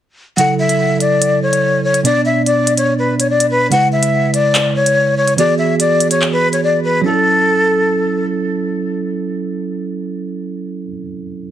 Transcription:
0.37 tine electric piano C#3 F#3 E4 A4, flute F#5, closed hi-hat
0.59 flute E5
0.69 closed hi-hat
1.00 flute D5, closed hi-hat
1.22 closed hi-hat
1.42 flute C#5
1.53 closed hi-hat
1.84 flute C#5
1.94 closed hi-hat
2.03 tine electric piano B2 B3 D4 D5, flute D5, closed hi-hat
2.26 flute E5
2.46 flute D5, closed hi-hat
2.67 closed hi-hat
2.77 flute C#5, closed hi-hat
2.99 flute B4
3.19 flute C#5, closed hi-hat
3.30 flute D5
3.40 closed hi-hat
3.51 flute B4
3.70 tine electric piano C#3 G#3 E4 B4, flute F#5, closed hi-hat
3.92 flute E5
4.03 closed hi-hat
4.34 flute D5, closed hi-hat
4.55 clap, closed hi-hat
4.76 flute C#5
4.86 closed hi-hat
5.17 flute C#5
5.28 closed hi-hat
5.37 tine electric piano E3 B3 F#4 G#4, flute D5, closed hi-hat
5.59 flute E5
5.80 flute D5, closed hi-hat
6.00 closed hi-hat
6.11 flute C#5, closed hi-hat
6.22 clap
6.32 flute B4
6.53 flute C#5, closed hi-hat
6.63 flute D5
6.84 flute B4
7.01 tine electric piano F#3 C#4, flute A4
7.06 tine electric piano E4 A4

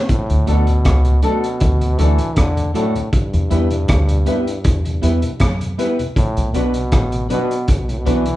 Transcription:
0.09 trombone A2, kick, closed hi-hat
0.29 tonewheel organ D2 A2, fingered electric bass D2, closed hi-hat
0.47 fingered electric bass D2, trombone B2, tonewheel organ F#3 A3 D4, clean electric guitar A3 D4 F#4 A4, grand piano D4 F#4 A4, closed hi-hat
0.67 tonewheel organ D2 A2, closed hi-hat
0.85 fingered electric bass C#2, kick, cross-stick, closed hi-hat
1.05 tonewheel organ D2 A2, closed hi-hat
1.22 trombone B2, tonewheel organ F#3 A3 D4, clean electric guitar A3 D4 F#4 A4, grand piano D4 F#4 A4, closed hi-hat
1.44 closed hi-hat
1.60 fingered electric bass D2, kick, closed hi-hat
1.80 tonewheel organ D2 A2, closed hi-hat
1.98 fingered electric bass D2, trombone E3, tonewheel organ F#3 A3 D4, clean electric guitar A3 D4 F#4 A4, grand piano D4 F#4 A4, closed hi-hat
2.18 tonewheel organ D2 A2, grand piano F#4 A4, closed hi-hat
2.36 fingered electric bass E2, trombone D3, kick, cross-stick, closed hi-hat
2.57 tonewheel organ D2 A2, closed hi-hat
2.74 trombone A2, tonewheel organ F#3 A3 D4, clean electric guitar A3 D4 F#4 A4, grand piano D4 F#4 A4, closed hi-hat
2.95 tonewheel organ D2 A2, closed hi-hat
3.13 trombone G2, kick, closed hi-hat
3.33 tonewheel organ E2 B2, fingered electric bass E2, closed hi-hat
3.50 fingered electric bass E2, tonewheel organ G3 B3 E4, clean electric guitar B3 E4 G4 B4, grand piano E4 G4 B4, closed hi-hat
3.70 tonewheel organ E2 B2, closed hi-hat
3.88 fingered electric bass D2, kick, cross-stick, closed hi-hat
4.09 tonewheel organ E2 B2, closed hi-hat
4.26 tonewheel organ G3 B3 E4, clean electric guitar B3 E4 G4 B4, grand piano E4 G4 B4, closed hi-hat
4.47 closed hi-hat
4.64 fingered electric bass E2, kick, closed hi-hat
4.85 tonewheel organ E2 B2, closed hi-hat
5.02 fingered electric bass E2, tonewheel organ G3 B3 E4, clean electric guitar B3 E4 G4 B4, grand piano E4 G4 B4, closed hi-hat
5.22 tonewheel organ E2 B2, grand piano G4 B4, closed hi-hat
5.40 fingered electric bass F#2, kick, cross-stick, closed hi-hat
5.61 tonewheel organ E2 B2, closed hi-hat
5.78 tonewheel organ G3 B3 E4, clean electric guitar B3 E4 G4 B4, grand piano E4 G4 B4, closed hi-hat
5.99 tonewheel organ E2 B2, closed hi-hat
6.16 trombone A2, kick, closed hi-hat
6.37 fingered electric bass B1, tonewheel organ B2, closed hi-hat
6.54 fingered electric bass B1, trombone B2, tonewheel organ F#3 B3 D4, clean electric guitar B3 D4 F#4 B4, grand piano D4 F#4 B4, closed hi-hat
6.74 tonewheel organ B2, closed hi-hat
6.92 fingered electric bass A1, kick, cross-stick, closed hi-hat
7.12 tonewheel organ B2, closed hi-hat
7.29 trombone B2, tonewheel organ F#3 B3 D4, clean electric guitar B3 D4 F#4 B4, grand piano D4 F#4 B4, closed hi-hat
7.51 closed hi-hat
7.68 fingered electric bass B1, trombone C#3, kick, closed hi-hat
7.80 trombone B2
7.89 trombone A2, tonewheel organ B2, closed hi-hat
7.98 trombone B2
8.05 fingered electric bass B1, trombone E3, tonewheel organ F#3 B3 D4, clean electric guitar B3 D4 F#4 B4, grand piano D4 F#4 B4, closed hi-hat
8.26 tonewheel organ B2, grand piano F#4 B4, closed hi-hat

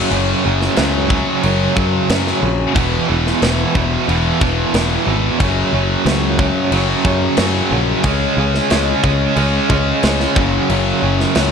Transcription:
Already playing: distorted electric guitar F#2, overdriven electric guitar C#3 F#3
0.11 picked electric bass F#1, overdriven electric guitar F#2 C#3 F#3, crash
0.44 picked electric bass F#1, overdriven electric guitar F#2 C#3 F#3
0.62 snare
0.76 picked electric bass C#2, overdriven electric guitar F#2 C#3 F#3, snare, crash
1.09 overdriven electric guitar F#2 C#3 F#3, kick
1.42 picked electric bass F#1, overdriven electric guitar F#2 C#3 F#3, crash
1.75 overdriven electric guitar F#2 C#3 F#3, picked electric bass F#2, kick
2.09 overdriven electric guitar F#2 C#3 F#3, picked electric bass F#2, snare, crash
2.27 snare
2.42 picked electric bass A#1, overdriven electric guitar F#2 C#3 F#3
2.75 picked electric bass E1, overdriven electric guitar E2 B2 E3, kick, crash
3.09 picked electric bass E1, overdriven electric guitar E2 B2 E3
3.27 snare
3.41 picked electric bass E1, overdriven electric guitar E2 B2 E3, snare, crash
3.74 picked electric bass E1, overdriven electric guitar E2 B2 E3, kick
4.07 picked electric bass E1, overdriven electric guitar E2 B2 E3, crash
4.40 picked electric bass E1, overdriven electric guitar E2 B2 E3, kick
4.73 picked electric bass E1, overdriven electric guitar E2 B2 E3, snare, crash
5.07 picked electric bass G#1, overdriven electric guitar E2 B2 E3
5.39 picked electric bass F#1, overdriven electric guitar F#2 C#3 F#3, kick, crash
5.73 picked electric bass F#1, overdriven electric guitar F#2 C#3 F#3
6.05 picked electric bass C#2, overdriven electric guitar F#2 C#3 F#3, snare, crash
6.39 overdriven electric guitar F#2 C#3 F#3, kick
6.72 picked electric bass F#1, overdriven electric guitar F#2 C#3 F#3, crash
7.05 picked electric bass F#2, overdriven electric guitar F#2 C#3 F#3, kick
7.37 overdriven electric guitar F#2 C#3 F#3, picked electric bass F#2, snare, crash
7.70 picked electric bass A#1, overdriven electric guitar F#2 C#3 F#3
8.03 picked electric bass C#2, overdriven electric guitar C#3 G#3 C#4, kick, crash
8.36 picked electric bass C#2, overdriven electric guitar C#3 G#3 C#4
8.54 snare
8.69 picked electric bass C#2, overdriven electric guitar C#3 G#3 C#4, snare, crash
9.03 picked electric bass C#2, overdriven electric guitar C#3 G#3 C#4, kick
9.36 picked electric bass C#2, overdriven electric guitar C#3 G#3 C#4, crash
9.69 picked electric bass C#2, overdriven electric guitar C#3 G#3 C#4, kick
10.03 picked electric bass C#2, overdriven electric guitar C#3 G#3 C#4, snare, crash
10.20 snare
10.35 picked electric bass F#1, overdriven electric guitar F#2 C#3 F#3, kick
10.68 picked electric bass F#1, overdriven electric guitar F#2 C#3 F#3, crash
11.02 picked electric bass F#1, overdriven electric guitar F#2 C#3 F#3
11.20 snare
11.35 picked electric bass C#2, overdriven electric guitar F#2 C#3 F#3, snare, crash

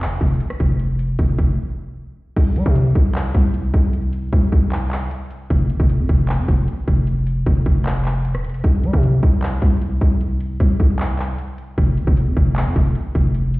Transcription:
0.01 clap, closed hi-hat
0.06 808-style bass F1
0.21 808-style bass F1, kick, closed hi-hat
0.27 closed hi-hat
0.34 closed hi-hat
0.40 closed hi-hat
0.50 cross-stick
0.60 808-style bass F1, kick, closed hi-hat
0.80 closed hi-hat
0.99 closed hi-hat
1.19 808-style bass F1, kick, closed hi-hat
1.38 808-style bass F1, kick, closed hi-hat
2.36 808-style bass C2, kick, closed hi-hat, crash
2.56 808-style bass G3, closed hi-hat
2.66 808-style bass C3, kick
2.76 closed hi-hat
2.95 808-style bass C2, kick, closed hi-hat
3.15 clap, closed hi-hat
3.35 808-style bass C2, kick, closed hi-hat
3.54 closed hi-hat
3.74 808-style bass C2, kick, closed hi-hat
3.93 closed hi-hat
4.13 closed hi-hat
4.33 808-style bass C2, kick, closed hi-hat
4.52 808-style bass C2, kick, open hi-hat
4.72 clap, closed hi-hat
4.91 clap, closed hi-hat
5.11 closed hi-hat
5.31 closed hi-hat
5.50 808-style bass F1, kick, closed hi-hat
5.70 808-style bass G1, closed hi-hat
5.80 808-style bass F1, kick
5.89 closed hi-hat
5.99 808-style bass F2
6.09 808-style bass F1, kick, closed hi-hat
6.29 clap, closed hi-hat
6.39 808-style bass F2
6.48 808-style bass F1, kick, closed hi-hat
6.68 closed hi-hat
6.88 808-style bass F1, kick, closed hi-hat
7.07 closed hi-hat
7.27 closed hi-hat
7.46 808-style bass F1, kick, closed hi-hat
7.66 808-style bass F1, kick, closed hi-hat
7.86 clap, closed hi-hat
8.05 clap, closed hi-hat
8.15 closed hi-hat
8.25 closed hi-hat
8.35 808-style bass D#1, cross-stick
8.44 closed hi-hat
8.49 808-style bass F1, closed hi-hat
8.54 closed hi-hat
8.59 closed hi-hat
8.64 808-style bass C2, kick, closed hi-hat
8.84 808-style bass G3, closed hi-hat
8.93 808-style bass C3, kick
9.03 closed hi-hat
9.23 808-style bass C2, kick, closed hi-hat
9.42 clap, closed hi-hat
9.62 808-style bass C2, kick, closed hi-hat
9.82 closed hi-hat
10.01 808-style bass C2, kick, closed hi-hat
10.21 closed hi-hat
10.41 closed hi-hat
10.60 808-style bass C2, kick, closed hi-hat
10.80 808-style bass C2, kick, open hi-hat
10.99 clap, closed hi-hat
11.19 clap, closed hi-hat
11.38 closed hi-hat
11.58 closed hi-hat
11.78 808-style bass F1, kick, closed hi-hat
11.97 808-style bass G1, closed hi-hat
12.07 808-style bass F1, kick
12.17 closed hi-hat
12.27 808-style bass F2
12.37 808-style bass F1, kick, closed hi-hat
12.56 clap, closed hi-hat
12.66 808-style bass F2
12.76 808-style bass F1, kick, closed hi-hat
12.95 closed hi-hat
13.15 808-style bass F1, kick, closed hi-hat
13.35 closed hi-hat
13.54 closed hi-hat

